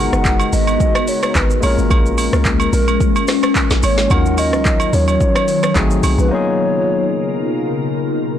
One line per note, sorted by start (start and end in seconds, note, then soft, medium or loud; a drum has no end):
0.00 1.58 G#3 medium
0.00 4.07 G#3 medium
0.00 1.58 B3 medium
0.00 1.61 B3 medium
0.00 1.59 D#4 medium
0.00 1.60 F#4 medium
0.00 1.61 F#4 medium
0.00 1.61 A#4 medium
0.00 0.55 F#5 loud
0.00 1.59 A#5 medium
0.13 0.49 F#1 medium
0.13 cross-stick medium
0.13 shaker medium
0.25 kick loud
0.25 clap loud
0.25 shaker medium
0.39 high agogo medium
0.39 shaker medium
0.53 0.78 G#1 medium
0.53 1.10 D#5 loud
0.53 open hi-hat soft
0.53 shaker medium
0.67 high agogo medium
0.67 shaker soft
0.80 kick loud
0.80 shaker medium
0.95 cross-stick loud
0.95 high agogo medium
0.95 shaker soft
1.08 1.38 C#5 medium
1.08 open hi-hat soft
1.08 shaker medium
1.23 cross-stick loud
1.23 high agogo medium
1.23 shaker medium
1.35 1.60 G#1 loud
1.35 1.63 B4 loud
1.35 kick medium
1.35 clap loud
1.35 shaker medium
1.50 shaker medium
1.60 1.77 A#1 loud
1.60 3.78 G#3 medium
1.60 3.79 A#3 medium
1.60 4.08 A#3 medium
1.60 5.72 C#4 medium
1.60 3.79 C#4 medium
1.60 1.76 C#5 medium
1.60 open hi-hat medium
1.60 high agogo medium
1.60 shaker medium
1.65 3.80 F4 medium
1.65 3.81 A#4 medium
1.78 1.89 G#1 medium
1.78 shaker medium
1.91 2.29 A#1 loud
1.91 2.69 A#4 loud
1.91 kick loud
1.91 high agogo medium
1.91 shaker medium
2.06 shaker medium
2.18 open hi-hat medium
2.18 high agogo medium
2.18 shaker medium
2.33 2.69 C#2 medium
2.33 cross-stick medium
2.33 shaker medium
2.45 kick loud
2.45 clap loud
2.45 shaker medium
2.60 high agogo medium
2.60 shaker medium
2.73 2.98 A#1 loud
2.73 3.25 A#4 medium
2.73 open hi-hat soft
2.73 shaker medium
2.88 high agogo medium
2.88 shaker soft
3.01 kick loud
3.01 shaker medium
3.16 high agogo medium
3.16 shaker medium
3.28 cross-stick loud
3.28 snare medium
3.28 open hi-hat medium
3.28 shaker medium
3.43 cross-stick loud
3.43 high agogo medium
3.43 shaker medium
3.55 kick medium
3.55 clap loud
3.55 shaker medium
3.70 3.82 A#1 medium
3.70 snare medium
3.70 shaker medium
3.83 4.08 G#1 loud
3.83 4.12 C#5 loud
3.83 open hi-hat medium
3.83 high agogo medium
3.83 shaker loud
3.98 snare medium
3.98 shaker medium
4.08 4.55 D#2 loud
4.08 5.71 F#3 medium
4.08 6.29 F#3 medium
4.08 5.72 C#4 medium
4.08 5.73 D#4 medium
4.08 4.40 F#5 loud
4.08 kick loud
4.08 high agogo medium
4.08 shaker medium
4.12 5.73 F4 medium
4.12 5.74 A#4 medium
4.26 shaker medium
4.38 4.95 D#5 loud
4.38 open hi-hat medium
4.38 high agogo medium
4.38 shaker loud
4.53 4.90 C#2 medium
4.53 cross-stick medium
4.53 shaker medium
4.65 kick loud
4.65 clap loud
4.65 shaker medium
4.80 high agogo medium
4.80 shaker medium
4.93 5.18 D#2 medium
4.93 5.09 C#5 loud
4.93 open hi-hat soft
4.93 shaker medium
5.08 5.78 C#5 loud
5.08 high agogo medium
5.08 shaker medium
5.21 kick loud
5.21 shaker medium
5.35 cross-stick loud
5.35 high agogo medium
5.35 shaker medium
5.48 open hi-hat soft
5.48 shaker medium
5.63 cross-stick loud
5.63 high agogo medium
5.63 shaker medium
5.74 6.01 G#1 loud
5.74 6.30 A3 medium
5.74 6.30 C4 medium
5.74 6.30 D#4 medium
5.74 6.31 F#4 medium
5.74 6.19 G#4 loud
5.74 6.32 G#4 medium
5.74 kick medium
5.74 clap loud
5.74 shaker medium
5.91 shaker medium
6.03 6.17 C2 medium
6.03 open hi-hat medium
6.03 high agogo medium
6.03 shaker medium
6.18 6.31 B1 medium
6.18 6.34 B4 medium
6.18 shaker medium
6.28 8.39 B2 medium
6.28 8.39 C#3 medium
6.28 8.39 A#3 medium
6.28 8.39 B3 medium
6.28 8.39 D#4 medium
6.28 8.39 F4 medium
6.28 8.39 A#4 medium
6.28 7.97 C#5 loud
6.33 8.39 F4 medium
6.33 8.39 G#4 medium